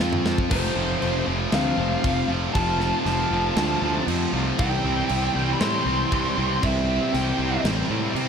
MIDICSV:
0, 0, Header, 1, 7, 480
1, 0, Start_track
1, 0, Tempo, 509338
1, 491, Time_signature, 4, 2, 24, 8
1, 7807, End_track
2, 0, Start_track
2, 0, Title_t, "Lead electric guitar"
2, 0, Program_c, 0, 29
2, 478, Note_on_c, 0, 72, 102
2, 1169, Note_off_c, 0, 72, 0
2, 1453, Note_on_c, 0, 77, 123
2, 2137, Note_off_c, 0, 77, 0
2, 2386, Note_on_c, 0, 81, 100
2, 2866, Note_off_c, 0, 81, 0
2, 2877, Note_on_c, 0, 81, 96
2, 3809, Note_off_c, 0, 81, 0
2, 4323, Note_on_c, 0, 79, 88
2, 5206, Note_on_c, 0, 83, 89
2, 5249, Note_off_c, 0, 79, 0
2, 5279, Note_off_c, 0, 83, 0
2, 5283, Note_on_c, 0, 84, 122
2, 6255, Note_on_c, 0, 76, 85
2, 6276, Note_off_c, 0, 84, 0
2, 6699, Note_off_c, 0, 76, 0
2, 6730, Note_on_c, 0, 79, 83
2, 7175, Note_off_c, 0, 79, 0
2, 7807, End_track
3, 0, Start_track
3, 0, Title_t, "Lead electric guitar"
3, 0, Program_c, 1, 29
3, 5225, Note_on_c, 1, 67, 72
3, 5289, Note_off_c, 1, 67, 0
3, 5305, Note_on_c, 1, 67, 81
3, 6220, Note_off_c, 1, 67, 0
3, 7807, End_track
4, 0, Start_track
4, 0, Title_t, "Distorted electric guitar"
4, 0, Program_c, 2, 30
4, 0, Note_on_c, 2, 53, 86
4, 0, Note_on_c, 2, 60, 94
4, 4, Note_on_c, 2, 65, 111
4, 471, Note_off_c, 2, 53, 0
4, 479, Note_off_c, 2, 60, 0
4, 481, Note_off_c, 2, 65, 0
4, 482, Note_on_c, 2, 53, 93
4, 487, Note_on_c, 2, 57, 101
4, 493, Note_on_c, 2, 60, 100
4, 498, Note_on_c, 2, 65, 103
4, 717, Note_off_c, 2, 53, 0
4, 721, Note_on_c, 2, 53, 81
4, 722, Note_off_c, 2, 57, 0
4, 724, Note_off_c, 2, 60, 0
4, 726, Note_off_c, 2, 65, 0
4, 726, Note_on_c, 2, 57, 84
4, 728, Note_on_c, 2, 60, 92
4, 730, Note_on_c, 2, 65, 99
4, 959, Note_off_c, 2, 53, 0
4, 963, Note_off_c, 2, 57, 0
4, 963, Note_on_c, 2, 53, 97
4, 967, Note_off_c, 2, 60, 0
4, 967, Note_on_c, 2, 57, 108
4, 971, Note_on_c, 2, 60, 107
4, 972, Note_off_c, 2, 65, 0
4, 976, Note_on_c, 2, 65, 108
4, 1188, Note_off_c, 2, 53, 0
4, 1192, Note_on_c, 2, 53, 92
4, 1195, Note_off_c, 2, 57, 0
4, 1199, Note_off_c, 2, 60, 0
4, 1199, Note_on_c, 2, 57, 96
4, 1203, Note_off_c, 2, 65, 0
4, 1203, Note_on_c, 2, 60, 94
4, 1207, Note_on_c, 2, 65, 100
4, 1430, Note_off_c, 2, 53, 0
4, 1433, Note_off_c, 2, 57, 0
4, 1442, Note_on_c, 2, 53, 88
4, 1445, Note_on_c, 2, 57, 77
4, 1446, Note_off_c, 2, 65, 0
4, 1449, Note_off_c, 2, 60, 0
4, 1453, Note_on_c, 2, 60, 91
4, 1458, Note_on_c, 2, 65, 85
4, 1676, Note_off_c, 2, 53, 0
4, 1678, Note_off_c, 2, 57, 0
4, 1687, Note_on_c, 2, 53, 85
4, 1689, Note_off_c, 2, 65, 0
4, 1689, Note_on_c, 2, 57, 83
4, 1692, Note_off_c, 2, 60, 0
4, 1696, Note_on_c, 2, 60, 87
4, 1700, Note_on_c, 2, 65, 99
4, 1914, Note_off_c, 2, 53, 0
4, 1916, Note_off_c, 2, 57, 0
4, 1926, Note_on_c, 2, 53, 102
4, 1927, Note_off_c, 2, 65, 0
4, 1927, Note_on_c, 2, 57, 105
4, 1932, Note_off_c, 2, 60, 0
4, 1935, Note_on_c, 2, 60, 94
4, 1939, Note_on_c, 2, 65, 105
4, 2145, Note_off_c, 2, 53, 0
4, 2153, Note_off_c, 2, 57, 0
4, 2156, Note_on_c, 2, 53, 89
4, 2162, Note_off_c, 2, 65, 0
4, 2164, Note_on_c, 2, 57, 88
4, 2166, Note_off_c, 2, 60, 0
4, 2170, Note_on_c, 2, 60, 98
4, 2174, Note_on_c, 2, 65, 97
4, 2392, Note_off_c, 2, 53, 0
4, 2401, Note_off_c, 2, 57, 0
4, 2403, Note_on_c, 2, 53, 100
4, 2405, Note_off_c, 2, 65, 0
4, 2407, Note_off_c, 2, 60, 0
4, 2410, Note_on_c, 2, 60, 101
4, 2412, Note_on_c, 2, 57, 104
4, 2416, Note_on_c, 2, 65, 117
4, 2618, Note_off_c, 2, 57, 0
4, 2620, Note_off_c, 2, 53, 0
4, 2629, Note_on_c, 2, 57, 92
4, 2631, Note_off_c, 2, 65, 0
4, 2631, Note_on_c, 2, 53, 82
4, 2638, Note_off_c, 2, 60, 0
4, 2642, Note_on_c, 2, 60, 95
4, 2642, Note_on_c, 2, 65, 99
4, 2872, Note_off_c, 2, 53, 0
4, 2878, Note_off_c, 2, 57, 0
4, 2883, Note_on_c, 2, 53, 87
4, 2887, Note_off_c, 2, 65, 0
4, 2889, Note_off_c, 2, 60, 0
4, 2889, Note_on_c, 2, 57, 94
4, 2893, Note_on_c, 2, 60, 99
4, 2899, Note_on_c, 2, 65, 106
4, 3105, Note_off_c, 2, 53, 0
4, 3112, Note_off_c, 2, 57, 0
4, 3117, Note_off_c, 2, 65, 0
4, 3117, Note_on_c, 2, 53, 83
4, 3123, Note_on_c, 2, 57, 90
4, 3127, Note_off_c, 2, 60, 0
4, 3128, Note_on_c, 2, 65, 99
4, 3131, Note_on_c, 2, 60, 98
4, 3347, Note_off_c, 2, 53, 0
4, 3350, Note_off_c, 2, 57, 0
4, 3358, Note_on_c, 2, 53, 91
4, 3360, Note_off_c, 2, 65, 0
4, 3362, Note_on_c, 2, 57, 83
4, 3364, Note_off_c, 2, 60, 0
4, 3368, Note_on_c, 2, 60, 93
4, 3371, Note_on_c, 2, 65, 98
4, 3579, Note_off_c, 2, 53, 0
4, 3590, Note_on_c, 2, 53, 82
4, 3593, Note_off_c, 2, 57, 0
4, 3593, Note_off_c, 2, 65, 0
4, 3598, Note_off_c, 2, 60, 0
4, 3602, Note_on_c, 2, 60, 81
4, 3604, Note_on_c, 2, 57, 85
4, 3604, Note_on_c, 2, 65, 88
4, 3824, Note_off_c, 2, 53, 0
4, 3829, Note_off_c, 2, 57, 0
4, 3835, Note_off_c, 2, 65, 0
4, 3835, Note_on_c, 2, 53, 99
4, 3840, Note_on_c, 2, 57, 102
4, 3842, Note_off_c, 2, 60, 0
4, 3845, Note_on_c, 2, 60, 113
4, 3846, Note_on_c, 2, 65, 106
4, 4062, Note_off_c, 2, 53, 0
4, 4070, Note_off_c, 2, 57, 0
4, 4073, Note_on_c, 2, 53, 89
4, 4074, Note_off_c, 2, 65, 0
4, 4076, Note_off_c, 2, 60, 0
4, 4080, Note_on_c, 2, 60, 91
4, 4081, Note_on_c, 2, 57, 90
4, 4086, Note_on_c, 2, 65, 90
4, 4310, Note_off_c, 2, 53, 0
4, 4314, Note_off_c, 2, 57, 0
4, 4316, Note_off_c, 2, 65, 0
4, 4320, Note_on_c, 2, 48, 107
4, 4323, Note_on_c, 2, 52, 103
4, 4327, Note_on_c, 2, 55, 110
4, 4328, Note_off_c, 2, 60, 0
4, 4332, Note_on_c, 2, 60, 108
4, 4340, Note_on_c, 2, 64, 115
4, 4556, Note_off_c, 2, 48, 0
4, 4559, Note_on_c, 2, 48, 89
4, 4562, Note_off_c, 2, 52, 0
4, 4566, Note_on_c, 2, 52, 97
4, 4568, Note_off_c, 2, 55, 0
4, 4569, Note_off_c, 2, 60, 0
4, 4572, Note_on_c, 2, 55, 89
4, 4573, Note_on_c, 2, 60, 89
4, 4574, Note_off_c, 2, 64, 0
4, 4578, Note_on_c, 2, 64, 108
4, 4799, Note_off_c, 2, 48, 0
4, 4803, Note_on_c, 2, 48, 93
4, 4812, Note_off_c, 2, 52, 0
4, 4813, Note_off_c, 2, 55, 0
4, 4815, Note_on_c, 2, 52, 108
4, 4816, Note_on_c, 2, 55, 106
4, 4817, Note_off_c, 2, 60, 0
4, 4820, Note_off_c, 2, 64, 0
4, 4821, Note_on_c, 2, 60, 111
4, 4824, Note_on_c, 2, 64, 114
4, 5036, Note_off_c, 2, 48, 0
4, 5039, Note_on_c, 2, 48, 92
4, 5040, Note_off_c, 2, 52, 0
4, 5044, Note_on_c, 2, 52, 98
4, 5049, Note_off_c, 2, 55, 0
4, 5049, Note_off_c, 2, 60, 0
4, 5052, Note_off_c, 2, 64, 0
4, 5053, Note_on_c, 2, 55, 94
4, 5053, Note_on_c, 2, 60, 99
4, 5055, Note_on_c, 2, 64, 91
4, 5274, Note_off_c, 2, 48, 0
4, 5279, Note_off_c, 2, 52, 0
4, 5285, Note_on_c, 2, 48, 79
4, 5286, Note_off_c, 2, 55, 0
4, 5287, Note_off_c, 2, 64, 0
4, 5290, Note_on_c, 2, 52, 91
4, 5295, Note_off_c, 2, 60, 0
4, 5297, Note_on_c, 2, 55, 86
4, 5298, Note_on_c, 2, 60, 84
4, 5298, Note_on_c, 2, 64, 102
4, 5516, Note_off_c, 2, 48, 0
4, 5519, Note_off_c, 2, 52, 0
4, 5522, Note_off_c, 2, 55, 0
4, 5527, Note_on_c, 2, 48, 81
4, 5531, Note_on_c, 2, 52, 92
4, 5533, Note_off_c, 2, 64, 0
4, 5533, Note_on_c, 2, 55, 91
4, 5540, Note_off_c, 2, 60, 0
4, 5543, Note_on_c, 2, 60, 87
4, 5545, Note_on_c, 2, 64, 90
4, 5746, Note_off_c, 2, 48, 0
4, 5753, Note_off_c, 2, 52, 0
4, 5756, Note_off_c, 2, 55, 0
4, 5757, Note_on_c, 2, 48, 97
4, 5764, Note_on_c, 2, 52, 100
4, 5766, Note_off_c, 2, 60, 0
4, 5767, Note_on_c, 2, 55, 99
4, 5768, Note_off_c, 2, 64, 0
4, 5770, Note_on_c, 2, 60, 110
4, 5779, Note_on_c, 2, 64, 109
4, 5986, Note_off_c, 2, 48, 0
4, 5992, Note_off_c, 2, 52, 0
4, 5997, Note_on_c, 2, 48, 85
4, 5999, Note_off_c, 2, 55, 0
4, 6003, Note_on_c, 2, 52, 85
4, 6008, Note_off_c, 2, 64, 0
4, 6010, Note_off_c, 2, 60, 0
4, 6010, Note_on_c, 2, 55, 89
4, 6013, Note_on_c, 2, 60, 95
4, 6019, Note_on_c, 2, 64, 90
4, 6226, Note_off_c, 2, 48, 0
4, 6232, Note_off_c, 2, 52, 0
4, 6237, Note_off_c, 2, 55, 0
4, 6237, Note_on_c, 2, 48, 104
4, 6239, Note_off_c, 2, 64, 0
4, 6244, Note_on_c, 2, 52, 107
4, 6247, Note_off_c, 2, 60, 0
4, 6248, Note_on_c, 2, 55, 98
4, 6250, Note_on_c, 2, 60, 93
4, 6250, Note_on_c, 2, 64, 110
4, 6468, Note_off_c, 2, 48, 0
4, 6472, Note_off_c, 2, 52, 0
4, 6473, Note_off_c, 2, 55, 0
4, 6480, Note_on_c, 2, 48, 81
4, 6483, Note_on_c, 2, 52, 85
4, 6484, Note_on_c, 2, 55, 84
4, 6487, Note_off_c, 2, 64, 0
4, 6491, Note_off_c, 2, 60, 0
4, 6495, Note_on_c, 2, 60, 99
4, 6498, Note_on_c, 2, 64, 86
4, 6709, Note_off_c, 2, 48, 0
4, 6715, Note_off_c, 2, 52, 0
4, 6718, Note_off_c, 2, 55, 0
4, 6720, Note_on_c, 2, 48, 90
4, 6726, Note_on_c, 2, 52, 91
4, 6728, Note_off_c, 2, 60, 0
4, 6729, Note_off_c, 2, 64, 0
4, 6730, Note_on_c, 2, 55, 106
4, 6731, Note_on_c, 2, 60, 109
4, 6740, Note_on_c, 2, 64, 119
4, 6953, Note_off_c, 2, 48, 0
4, 6964, Note_off_c, 2, 52, 0
4, 6964, Note_off_c, 2, 55, 0
4, 6965, Note_on_c, 2, 48, 87
4, 6970, Note_off_c, 2, 64, 0
4, 6974, Note_off_c, 2, 60, 0
4, 6976, Note_on_c, 2, 52, 83
4, 6976, Note_on_c, 2, 55, 96
4, 6978, Note_on_c, 2, 60, 88
4, 6981, Note_on_c, 2, 64, 99
4, 7187, Note_off_c, 2, 48, 0
4, 7199, Note_on_c, 2, 48, 85
4, 7200, Note_off_c, 2, 52, 0
4, 7201, Note_off_c, 2, 55, 0
4, 7211, Note_off_c, 2, 64, 0
4, 7211, Note_on_c, 2, 52, 89
4, 7212, Note_on_c, 2, 55, 91
4, 7213, Note_off_c, 2, 60, 0
4, 7217, Note_on_c, 2, 60, 82
4, 7222, Note_on_c, 2, 64, 98
4, 7439, Note_off_c, 2, 48, 0
4, 7445, Note_off_c, 2, 52, 0
4, 7450, Note_on_c, 2, 48, 74
4, 7451, Note_off_c, 2, 55, 0
4, 7451, Note_off_c, 2, 64, 0
4, 7456, Note_on_c, 2, 52, 92
4, 7459, Note_off_c, 2, 60, 0
4, 7462, Note_on_c, 2, 55, 87
4, 7462, Note_on_c, 2, 64, 92
4, 7463, Note_on_c, 2, 60, 83
4, 7684, Note_off_c, 2, 48, 0
4, 7685, Note_off_c, 2, 52, 0
4, 7691, Note_off_c, 2, 55, 0
4, 7695, Note_on_c, 2, 48, 100
4, 7697, Note_off_c, 2, 64, 0
4, 7697, Note_on_c, 2, 52, 88
4, 7701, Note_off_c, 2, 60, 0
4, 7702, Note_on_c, 2, 55, 101
4, 7705, Note_on_c, 2, 60, 95
4, 7708, Note_on_c, 2, 64, 100
4, 7807, Note_off_c, 2, 48, 0
4, 7807, Note_off_c, 2, 52, 0
4, 7807, Note_off_c, 2, 55, 0
4, 7807, Note_off_c, 2, 60, 0
4, 7807, Note_off_c, 2, 64, 0
4, 7807, End_track
5, 0, Start_track
5, 0, Title_t, "Distorted electric guitar"
5, 0, Program_c, 3, 30
5, 468, Note_on_c, 3, 41, 110
5, 476, Note_on_c, 3, 48, 121
5, 712, Note_off_c, 3, 48, 0
5, 715, Note_off_c, 3, 41, 0
5, 718, Note_on_c, 3, 41, 80
5, 723, Note_on_c, 3, 48, 94
5, 950, Note_off_c, 3, 41, 0
5, 954, Note_on_c, 3, 41, 94
5, 956, Note_off_c, 3, 48, 0
5, 967, Note_on_c, 3, 48, 94
5, 1180, Note_off_c, 3, 48, 0
5, 1183, Note_off_c, 3, 41, 0
5, 1187, Note_on_c, 3, 41, 90
5, 1191, Note_on_c, 3, 48, 85
5, 1418, Note_off_c, 3, 41, 0
5, 1424, Note_off_c, 3, 48, 0
5, 1429, Note_on_c, 3, 41, 82
5, 1436, Note_on_c, 3, 48, 96
5, 1659, Note_off_c, 3, 41, 0
5, 1664, Note_off_c, 3, 48, 0
5, 1670, Note_on_c, 3, 41, 85
5, 1676, Note_on_c, 3, 48, 92
5, 1897, Note_off_c, 3, 48, 0
5, 1898, Note_off_c, 3, 41, 0
5, 1908, Note_on_c, 3, 48, 102
5, 1909, Note_on_c, 3, 41, 107
5, 2140, Note_off_c, 3, 41, 0
5, 2149, Note_off_c, 3, 48, 0
5, 2151, Note_on_c, 3, 41, 88
5, 2160, Note_on_c, 3, 48, 95
5, 2373, Note_off_c, 3, 41, 0
5, 2385, Note_off_c, 3, 48, 0
5, 2385, Note_on_c, 3, 41, 100
5, 2397, Note_on_c, 3, 48, 113
5, 2616, Note_off_c, 3, 41, 0
5, 2622, Note_off_c, 3, 48, 0
5, 2627, Note_on_c, 3, 41, 84
5, 2633, Note_on_c, 3, 48, 86
5, 2864, Note_off_c, 3, 41, 0
5, 2871, Note_off_c, 3, 48, 0
5, 2875, Note_on_c, 3, 41, 96
5, 2882, Note_on_c, 3, 48, 102
5, 3111, Note_off_c, 3, 41, 0
5, 3114, Note_off_c, 3, 48, 0
5, 3122, Note_on_c, 3, 41, 93
5, 3126, Note_on_c, 3, 48, 95
5, 3341, Note_off_c, 3, 41, 0
5, 3351, Note_off_c, 3, 48, 0
5, 3352, Note_on_c, 3, 41, 91
5, 3362, Note_on_c, 3, 48, 84
5, 3600, Note_off_c, 3, 41, 0
5, 3608, Note_off_c, 3, 48, 0
5, 3611, Note_on_c, 3, 41, 86
5, 3619, Note_on_c, 3, 48, 97
5, 3824, Note_off_c, 3, 41, 0
5, 3831, Note_off_c, 3, 48, 0
5, 3835, Note_on_c, 3, 41, 101
5, 3842, Note_on_c, 3, 48, 114
5, 4079, Note_off_c, 3, 41, 0
5, 4081, Note_off_c, 3, 48, 0
5, 4090, Note_on_c, 3, 41, 97
5, 4092, Note_on_c, 3, 48, 88
5, 4307, Note_off_c, 3, 48, 0
5, 4319, Note_off_c, 3, 41, 0
5, 7807, End_track
6, 0, Start_track
6, 0, Title_t, "Picked electric bass"
6, 0, Program_c, 4, 34
6, 1, Note_on_c, 4, 41, 89
6, 453, Note_off_c, 4, 41, 0
6, 481, Note_on_c, 4, 29, 98
6, 650, Note_off_c, 4, 29, 0
6, 721, Note_on_c, 4, 29, 89
6, 890, Note_off_c, 4, 29, 0
6, 970, Note_on_c, 4, 29, 92
6, 1136, Note_off_c, 4, 29, 0
6, 1206, Note_on_c, 4, 29, 98
6, 1373, Note_off_c, 4, 29, 0
6, 1440, Note_on_c, 4, 38, 93
6, 1610, Note_off_c, 4, 38, 0
6, 1677, Note_on_c, 4, 29, 96
6, 1848, Note_off_c, 4, 29, 0
6, 1925, Note_on_c, 4, 29, 90
6, 2093, Note_off_c, 4, 29, 0
6, 2151, Note_on_c, 4, 29, 90
6, 2325, Note_off_c, 4, 29, 0
6, 2408, Note_on_c, 4, 29, 93
6, 2741, Note_off_c, 4, 29, 0
6, 2882, Note_on_c, 4, 29, 97
6, 3052, Note_off_c, 4, 29, 0
6, 3121, Note_on_c, 4, 29, 99
6, 3291, Note_off_c, 4, 29, 0
6, 3357, Note_on_c, 4, 38, 86
6, 3528, Note_off_c, 4, 38, 0
6, 3601, Note_on_c, 4, 38, 88
6, 3771, Note_off_c, 4, 38, 0
6, 3838, Note_on_c, 4, 41, 95
6, 4009, Note_off_c, 4, 41, 0
6, 4082, Note_on_c, 4, 36, 95
6, 4252, Note_off_c, 4, 36, 0
6, 4329, Note_on_c, 4, 36, 98
6, 4496, Note_off_c, 4, 36, 0
6, 4564, Note_on_c, 4, 36, 100
6, 4733, Note_off_c, 4, 36, 0
6, 4812, Note_on_c, 4, 36, 100
6, 4978, Note_off_c, 4, 36, 0
6, 5051, Note_on_c, 4, 36, 95
6, 5217, Note_off_c, 4, 36, 0
6, 5292, Note_on_c, 4, 45, 88
6, 5458, Note_off_c, 4, 45, 0
6, 5521, Note_on_c, 4, 36, 93
6, 5690, Note_off_c, 4, 36, 0
6, 5770, Note_on_c, 4, 36, 102
6, 5936, Note_off_c, 4, 36, 0
6, 6012, Note_on_c, 4, 36, 87
6, 6177, Note_off_c, 4, 36, 0
6, 6250, Note_on_c, 4, 36, 98
6, 6580, Note_off_c, 4, 36, 0
6, 6732, Note_on_c, 4, 36, 93
6, 6896, Note_off_c, 4, 36, 0
6, 6963, Note_on_c, 4, 36, 97
6, 7130, Note_off_c, 4, 36, 0
6, 7202, Note_on_c, 4, 33, 99
6, 7369, Note_off_c, 4, 33, 0
6, 7446, Note_on_c, 4, 45, 94
6, 7611, Note_off_c, 4, 45, 0
6, 7680, Note_on_c, 4, 48, 100
6, 7807, Note_off_c, 4, 48, 0
6, 7807, End_track
7, 0, Start_track
7, 0, Title_t, "Drums"
7, 0, Note_on_c, 9, 38, 88
7, 91, Note_off_c, 9, 38, 0
7, 119, Note_on_c, 9, 45, 85
7, 213, Note_off_c, 9, 45, 0
7, 242, Note_on_c, 9, 38, 104
7, 336, Note_off_c, 9, 38, 0
7, 361, Note_on_c, 9, 36, 97
7, 455, Note_off_c, 9, 36, 0
7, 478, Note_on_c, 9, 49, 125
7, 478, Note_on_c, 9, 57, 64
7, 482, Note_on_c, 9, 36, 118
7, 573, Note_off_c, 9, 49, 0
7, 573, Note_off_c, 9, 57, 0
7, 576, Note_off_c, 9, 36, 0
7, 961, Note_on_c, 9, 57, 66
7, 1056, Note_off_c, 9, 57, 0
7, 1436, Note_on_c, 9, 38, 121
7, 1436, Note_on_c, 9, 57, 66
7, 1531, Note_off_c, 9, 38, 0
7, 1531, Note_off_c, 9, 57, 0
7, 1924, Note_on_c, 9, 36, 90
7, 1928, Note_on_c, 9, 57, 67
7, 2019, Note_off_c, 9, 36, 0
7, 2022, Note_off_c, 9, 57, 0
7, 2402, Note_on_c, 9, 57, 70
7, 2405, Note_on_c, 9, 36, 94
7, 2496, Note_off_c, 9, 57, 0
7, 2499, Note_off_c, 9, 36, 0
7, 2641, Note_on_c, 9, 38, 34
7, 2735, Note_off_c, 9, 38, 0
7, 2887, Note_on_c, 9, 38, 34
7, 2887, Note_on_c, 9, 57, 67
7, 2982, Note_off_c, 9, 38, 0
7, 2982, Note_off_c, 9, 57, 0
7, 3362, Note_on_c, 9, 38, 119
7, 3362, Note_on_c, 9, 57, 73
7, 3457, Note_off_c, 9, 38, 0
7, 3457, Note_off_c, 9, 57, 0
7, 3844, Note_on_c, 9, 57, 72
7, 3939, Note_off_c, 9, 57, 0
7, 4321, Note_on_c, 9, 57, 68
7, 4327, Note_on_c, 9, 36, 110
7, 4416, Note_off_c, 9, 57, 0
7, 4422, Note_off_c, 9, 36, 0
7, 4799, Note_on_c, 9, 57, 69
7, 4894, Note_off_c, 9, 57, 0
7, 5285, Note_on_c, 9, 38, 119
7, 5285, Note_on_c, 9, 57, 68
7, 5379, Note_off_c, 9, 38, 0
7, 5379, Note_off_c, 9, 57, 0
7, 5765, Note_on_c, 9, 57, 64
7, 5768, Note_on_c, 9, 36, 88
7, 5859, Note_off_c, 9, 57, 0
7, 5862, Note_off_c, 9, 36, 0
7, 6250, Note_on_c, 9, 36, 90
7, 6251, Note_on_c, 9, 57, 66
7, 6344, Note_off_c, 9, 36, 0
7, 6345, Note_off_c, 9, 57, 0
7, 6732, Note_on_c, 9, 38, 37
7, 6732, Note_on_c, 9, 57, 70
7, 6826, Note_off_c, 9, 38, 0
7, 6826, Note_off_c, 9, 57, 0
7, 7211, Note_on_c, 9, 38, 113
7, 7211, Note_on_c, 9, 57, 74
7, 7305, Note_off_c, 9, 38, 0
7, 7305, Note_off_c, 9, 57, 0
7, 7691, Note_on_c, 9, 57, 73
7, 7786, Note_off_c, 9, 57, 0
7, 7807, End_track
0, 0, End_of_file